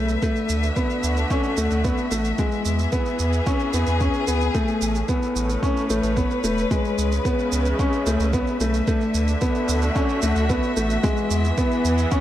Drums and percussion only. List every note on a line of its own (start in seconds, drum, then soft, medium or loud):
0.09 shaker soft
0.22 kick medium
0.22 shaker soft
0.36 shaker soft
0.49 shaker medium
0.63 shaker soft
0.76 kick medium
0.76 shaker soft
0.90 shaker soft
1.03 shaker medium
1.17 shaker soft
1.30 kick medium
1.30 shaker soft
1.44 shaker soft
1.57 shaker medium
1.71 shaker soft
1.84 kick medium
1.84 shaker soft
1.98 shaker soft
2.11 shaker medium
2.25 shaker soft
2.38 kick medium
2.38 shaker soft
2.52 shaker soft
2.65 shaker medium
2.79 shaker soft
2.92 kick loud
2.92 shaker soft
3.06 shaker soft
3.19 shaker medium
3.33 shaker soft
3.46 kick loud
3.46 shaker soft
3.60 shaker soft
3.73 shaker medium
3.87 shaker soft
4.00 kick medium
4.00 shaker soft
4.14 shaker soft
4.28 shaker medium
4.41 shaker soft
4.55 kick medium
4.55 shaker soft
4.68 shaker soft
4.82 shaker medium
4.95 shaker soft
5.08 kick medium
5.08 shaker soft
5.22 shaker soft
5.36 shaker medium
5.50 shaker soft
5.63 kick medium
5.63 shaker soft
5.77 shaker soft
5.90 shaker medium
6.03 shaker soft
6.17 kick medium
6.17 shaker soft
6.31 shaker soft
6.44 shaker medium
6.58 shaker soft
6.71 kick medium
6.71 shaker soft
6.85 shaker soft
6.98 shaker medium
7.12 shaker soft
7.25 kick medium
7.25 shaker soft
7.39 shaker soft
7.52 shaker medium
7.65 shaker soft
7.79 kick medium
7.79 shaker soft
7.93 shaker soft
8.06 shaker medium
8.20 shaker soft
8.33 kick medium
8.33 shaker soft
8.47 shaker soft
8.60 shaker medium
8.74 shaker soft
8.87 kick loud
8.87 shaker soft
9.01 shaker soft
9.14 shaker medium
9.28 shaker soft
9.41 kick medium
9.41 shaker soft
9.55 shaker soft
9.69 shaker medium
9.82 shaker soft
9.96 kick medium
9.96 shaker soft
10.09 shaker soft
10.22 shaker medium
10.36 shaker soft
10.50 kick medium
10.50 shaker soft
10.63 shaker soft
10.77 shaker medium
10.90 shaker soft
11.03 kick loud
11.03 shaker soft
11.17 shaker soft
11.31 shaker medium
11.45 shaker soft
11.58 kick medium
11.58 shaker soft
11.71 shaker soft
11.85 shaker medium
11.98 shaker soft
12.12 kick loud
12.12 shaker soft